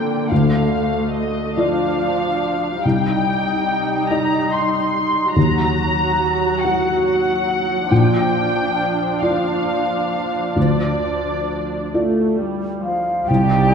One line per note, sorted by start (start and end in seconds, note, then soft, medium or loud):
0.00 0.26 A#1 soft
0.00 1.57 D3 soft
0.00 0.30 A#3 soft
0.00 0.27 F4 soft
0.00 0.28 D5 soft
0.00 0.30 G5 medium
0.31 2.80 D2 soft
0.31 1.57 A3 soft
0.31 1.15 F5 soft
1.14 1.55 D#5 soft
1.56 2.84 F3 soft
1.56 2.81 D4 soft
1.56 2.80 F4 soft
1.56 2.80 D5 soft
1.56 2.84 F5 medium
2.83 5.33 C2 soft
2.83 5.32 G3 soft
2.83 5.32 D#4 soft
2.83 4.10 G5 medium
4.10 5.33 D#4 soft
4.10 5.33 D#5 soft
4.10 4.52 A#5 medium
4.53 5.37 C6 soft
5.34 7.87 D#2 soft
5.34 7.87 F#3 soft
5.34 7.91 F#4 soft
5.34 6.59 A#5 medium
6.61 7.87 F#4 soft
6.61 7.04 F#5 medium
6.61 7.88 F#5 soft
7.05 7.89 F#5 medium
7.90 10.52 A#1 soft
7.90 11.80 F3 soft
7.90 11.80 D4 soft
7.90 9.21 G5 medium
9.21 10.53 F4 soft
9.21 10.53 D5 soft
9.21 10.56 F5 medium
10.56 13.24 D2 soft
10.56 11.93 D5 soft
11.94 12.35 A3 soft
11.94 13.25 F4 soft
11.94 13.26 D5 soft
12.37 12.83 G3 soft
12.83 13.29 F3 soft
12.83 13.30 F5 soft
13.27 13.74 C2 soft
13.27 13.74 D#4 soft
13.27 13.74 G4 soft
13.27 13.74 D5 soft
13.27 13.74 G5 medium